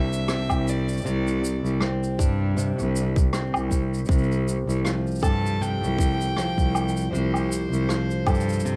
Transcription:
Already playing: C2 C3 C4 D4 E5
0.13 shaker
0.28 C4, cross-stick, shaker
0.50 C2, kick, low woodblock, shaker
0.68 D5, shaker
0.88 shaker
0.93 shaker
0.97 shaker
1.01 C2, shaker
1.05 C3, shaker
1.27 shaker
1.44 shaker
1.64 C2, shaker
1.80 C4, cross-stick
2.03 shaker
2.19 G2 D4, kick, shaker
2.57 C3, shaker
2.78 C2, shaker
2.96 shaker
3.16 kick, shaker
3.33 C4, cross-stick, shaker
3.54 C2, low woodblock, shaker
3.71 kick, shaker
3.94 shaker
3.98 shaker
4.05 C2 C3, kick, shaker
4.11 shaker
4.23 shaker
4.32 shaker
4.48 shaker
4.68 C2, shaker
4.84 F3, cross-stick, shaker
5.07 shaker
5.11 shaker
5.15 shaker
5.19 G2 A4 A5, kick, low woodblock, shaker
5.24 shaker
5.46 shaker
5.61 C3 G5, shaker
5.82 C2, shaker
5.99 kick, shaker
6.21 shaker
6.37 F3, cross-stick, shaker
6.58 C2, kick, shaker
6.75 low woodblock, shaker
6.88 shaker
6.97 shaker
7.01 shaker
7.13 C2 C3 C5, shaker
7.34 low woodblock, shaker
7.52 shaker
7.72 C2, shaker
7.89 F3, cross-stick, shaker
8.11 shaker
8.26 G2 A4, kick, low woodblock, shaker
8.34 shaker
8.40 shaker
8.49 shaker
8.53 shaker
8.60 shaker
8.65 C3, shaker

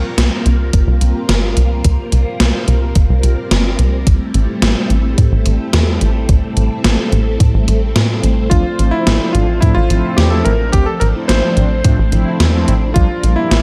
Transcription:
Already playing: G3 A#3 C4 F4 A#4
0.18 C2, snare, closed hi-hat
0.46 C2, closed hi-hat
0.73 G1, kick, closed hi-hat
0.87 C2
1.01 C2, closed hi-hat
1.29 G1, snare, closed hi-hat
1.57 C2, closed hi-hat
1.84 C2, kick, closed hi-hat
2.12 C2, closed hi-hat
2.40 C2, snare, closed hi-hat
2.68 C2, closed hi-hat
2.95 G1, kick, closed hi-hat
3.10 C2
3.23 C2, closed hi-hat
3.51 G1, snare, closed hi-hat
3.79 C2, closed hi-hat
4.07 A1 A3 E4 A4, kick, closed hi-hat
4.34 A1, closed hi-hat
4.62 A1, snare, closed hi-hat
4.90 A1, closed hi-hat
5.18 A2, kick, closed hi-hat
5.32 A1
5.46 A1, closed hi-hat
5.73 E2, snare, closed hi-hat
6.01 A1, closed hi-hat
6.29 A1, kick, closed hi-hat
6.57 A1, closed hi-hat
6.84 A1, snare, closed hi-hat
7.12 A1, closed hi-hat
7.40 A2, kick, closed hi-hat
7.54 A1
7.68 A1, closed hi-hat
7.96 A2, snare, closed hi-hat
8.23 A1, closed hi-hat
8.50 A1 F3 A3 C4 D4 F4 C5, kick, closed hi-hat
8.79 A1, closed hi-hat
8.91 F3 A3 C4 E4
9.07 A1, snare, closed hi-hat
9.33 A1 F3 A3 C4 D4 F4, closed hi-hat
9.61 A2 F3 A3 C4 D4 E4, kick, closed hi-hat
9.75 A1 F4
9.90 A1 F3 A3 C4 E4, closed hi-hat
10.17 E2 G4, snare, closed hi-hat
10.30 F3 A3 C4 E4 A4
10.45 A1 A#4, closed hi-hat
10.72 A1 F3 A3 C4 D4 G4, kick, closed hi-hat
10.86 A4
11.00 A1 A#4, closed hi-hat
11.15 F3 A3 C4 E4
11.28 A1 C5, snare, closed hi-hat
11.57 A1 F3 A3 C4 D4, closed hi-hat
11.84 A2 F3 A3 C4 D4, kick, closed hi-hat
11.99 A1
12.12 A1 F3 A3 C4 E4, closed hi-hat
12.40 E2, snare, closed hi-hat
12.54 F3 A3 C4 E4
12.68 A1, closed hi-hat
12.94 A#1 F3 G3 A#3 D4 F4 A#4, kick, closed hi-hat
13.23 A#1, closed hi-hat
13.36 F3 G3 A#3 E4
13.51 A#1, snare, closed hi-hat

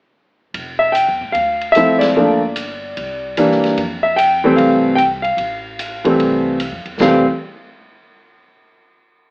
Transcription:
0.54 F1, ride
0.79 E5
0.92 G5, hi-hat pedal, ride
1.08 E2
1.21 A2
1.32 D2 F5, ride
1.61 ride
1.72 F3 E5, hi-hat pedal, ride
1.76 A3 C4 E4
1.99 D5, snare, ride
2.16 G1 F3 A3 A#3 D4
2.56 hi-hat pedal, ride
2.97 C2, ride
3.37 E3 G3 A#3 D4, hi-hat pedal, ride
3.51 snare
3.63 muted upright bass stroke, snare, ride
3.77 F2, ride
4.03 E5
4.16 G5, hi-hat pedal, ride
4.44 E3 G3 A3 C4
4.56 C2 F5, ride
4.95 G5, hi-hat pedal, ride
5.22 F5, ride
5.37 A1, ride
5.79 hi-hat pedal, ride
6.04 E3 G3 A3 C4, ride
6.18 C2, ride
6.60 hi-hat pedal, ride
6.72 F2
6.85 E2, ride
7.00 F1 E3 G3 A3 C4 F5, kick, snare

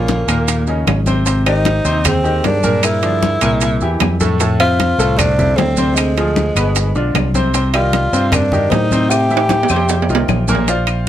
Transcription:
Already playing: A#1 C#3 A#3 C#4 F4
0.08 high bongo, high conga, low timbale, maracas
0.27 D#2 A#2 A#3 A#4, high bongo, high conga, high timbale, claves, maracas
0.48 high bongo, high conga, high timbale, maracas
0.67 C#3 C#4 D#4, high conga, maracas
0.87 G#1, high bongo, low bongo, high conga, high timbale, low timbale, claves, maracas
1.06 C3 C4 C5, high bongo, high conga, maracas
1.26 C3 C4 C5, high bongo, high conga, high timbale, maracas
1.46 D#3 D#4 G4 C5, high bongo, high conga, high timbale, claves, maracas
1.65 high bongo, high conga, high timbale, low timbale, maracas
1.84 D#2 C3 C4 C5, high bongo, high conga, maracas
2.05 C4 G#4, high bongo, high conga, low conga, high timbale, claves, maracas
2.24 D#3 D#4 G4, high conga, maracas
2.44 G2 D4 A#4, high bongo, low bongo, high conga, high timbale, low timbale, maracas
2.63 A#2 A#3 A#4, high bongo, high conga, maracas
2.83 E4 A#4, high bongo, high conga, high timbale, claves, maracas
3.02 D3 F3 D4, high bongo, high conga, high timbale, maracas
3.22 high bongo, high conga, low timbale, maracas
3.41 C2 A#2 A#3 A#4, high bongo, high conga, high timbale, claves, maracas
3.61 high bongo, high conga, high timbale, maracas
3.81 E2 E3 E4 G4, high conga, maracas
4.00 F2, high bongo, low bongo, high conga, high timbale, low timbale, claves, maracas
4.20 A2 A3 A4, high bongo, high conga, maracas
4.40 A2 A3 A4, high bongo, high conga, high timbale, maracas
4.59 C3 C4 F4 C5 E5, high bongo, high conga, high timbale, claves, maracas
4.80 high bongo, high conga, high timbale, low timbale, maracas
4.98 C2 A2 A3 A4, high bongo, high conga, maracas
5.17 D4 A4, high bongo, high conga, low conga, high timbale, claves, maracas
5.38 C3 C4 E4, high conga, low conga, maracas
5.56 D2 C4 A4, high bongo, low bongo, high conga, high timbale, low timbale, maracas
5.77 C3 C4 C5, high bongo, high conga, maracas
5.94 G#3 D4, high bongo, high timbale, claves, maracas
6.17 F3 F4 G#4, high bongo, high conga, high timbale, maracas
6.36 high bongo, high conga, low timbale, maracas
6.55 G1 B2 B3 B4, high bongo, high conga, high timbale, claves, maracas
6.75 high bongo, high conga, high timbale, maracas
6.94 B1 D3 D4 F4, high conga, maracas
7.14 C2, high bongo, low bongo, high conga, high timbale, low timbale, claves, maracas
7.34 C3 C4 C5, high bongo, high conga, maracas
7.54 C3 C4 C5, high bongo, high conga, high timbale, maracas
7.74 D#3 D#4 F4 G4 D5, high bongo, high conga, high timbale, claves, maracas
7.93 high bongo, high conga, high timbale, low timbale, maracas
8.13 G2 C3 C4 C5, high bongo, high conga, maracas
8.32 D4 A#4, high bongo, high conga, low conga, high timbale, claves, maracas
8.52 D#3 D#4 G4, high conga, low conga, maracas
8.70 A2 D#4 C5, high bongo, low bongo, high conga, high timbale, low timbale, maracas
8.91 C3 C4 C5, high bongo, high conga, maracas
9.10 G4 E5, high bongo, high conga, high timbale, claves, maracas
9.31 E3 E4 G4, high bongo, high conga, maracas
9.37 high timbale
9.49 high bongo, high conga, high timbale, maracas
9.63 low timbale
9.69 F2 C3 C4 C5, high bongo, high conga, claves, maracas
9.76 low timbale
9.89 high bongo, high conga, low timbale, maracas
10.02 low timbale
10.09 C2 D#3 D#4 F4, high conga, maracas
10.15 low timbale
10.28 A#1, high bongo, low bongo, high conga, low timbale, claves, maracas
10.48 A#2 A#3 A#4, high bongo, high conga, maracas
10.55 low timbale
10.68 F4 C5 D5 F5, high bongo, high conga, high timbale, maracas
10.87 high bongo, high conga, high timbale, claves, maracas

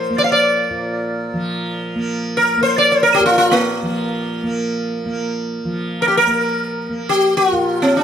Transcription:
Already playing: A#2 F3 A#3 C5
0.10 A#3
0.18 D5
0.24 F5
0.32 D5
0.70 A#2
1.33 F3
1.96 A#3
2.37 A#4
2.57 A#3
2.63 C5
2.78 D5
2.92 C5
3.03 A#4
3.14 G4
3.20 A#2
3.26 F4
3.38 F4
3.51 A#3
3.82 F3
4.43 A#3
5.05 A#3
5.65 F3
6.02 A#4
6.08 G4
6.17 A#4
6.27 A#3
6.89 A#3
7.09 G4
7.37 F#4
7.52 A#2 F4
7.82 C4
7.97 D4

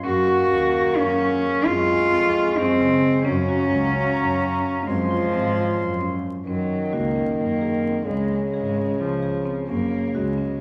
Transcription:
0.04 F#2 A#3 C#4 F#4 G#4 F#5 C#6
0.27 F#4
0.50 D#2 C#4
0.72 F#4
0.95 F#2 C#4
1.18 C#4
1.63 F#2 G#3 C4 F4 D#5 C6 C#6
1.88 F4
2.12 F2 C4
2.33 F4
2.56 F#2 C4
2.80 C#3
3.25 F#2 F#3 C#4 F#4 F5 A#5
3.49 F#4
3.70 C#2 C#4
3.95 F#4
4.18 F#2
4.41 C#4
4.86 F#2 F3 G#3 C4 F4 C#5 C6
5.11 F4
5.33 G#1 C4
5.56 F4
5.79 F#2
6.01 C#4
6.46 F#2 D#3 F#3 C#4
6.93 C#2 A#3 F#4
7.16 C#4
7.38 F#2 A#3
7.61 G#4
7.84 C4
8.06 C#2 C#3 G#3 C#4
8.54 G#1 G#3 G#4
8.77 C#4
9.00 C#2 F3
9.22 G#4
9.45 C4
9.68 F#2 C#3 A#3 C#4
10.07 A#3
10.15 C#2 G#3 F#4
10.38 C#4

